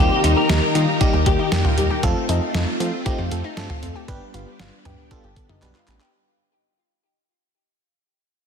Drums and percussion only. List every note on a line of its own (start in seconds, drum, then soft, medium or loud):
0.24 closed hi-hat medium
0.49 snare loud
0.49 closed hi-hat medium
0.75 closed hi-hat medium
1.01 kick medium
1.01 closed hi-hat medium
1.26 kick medium
1.26 closed hi-hat medium
1.52 snare loud
1.52 closed hi-hat medium
1.65 mid tom medium
1.78 closed hi-hat medium
2.03 kick loud
2.03 closed hi-hat medium
2.29 closed hi-hat medium
2.54 snare loud
2.54 closed hi-hat medium
2.80 closed hi-hat medium
3.06 kick medium
3.06 closed hi-hat medium
3.31 closed hi-hat medium
3.57 snare loud
3.57 closed hi-hat medium
3.70 mid tom medium
3.83 closed hi-hat medium
4.08 kick loud
4.08 closed hi-hat medium
4.34 closed hi-hat medium
4.60 snare loud
4.60 closed hi-hat medium
4.85 closed hi-hat medium
4.85 mid tom medium
5.11 kick medium
5.11 closed hi-hat medium
5.36 kick medium
5.36 closed hi-hat medium
5.49 mid tom medium
5.62 clap medium
5.62 closed hi-hat medium
5.75 clap medium
5.88 clap medium
5.88 closed hi-hat medium
6.01 clap medium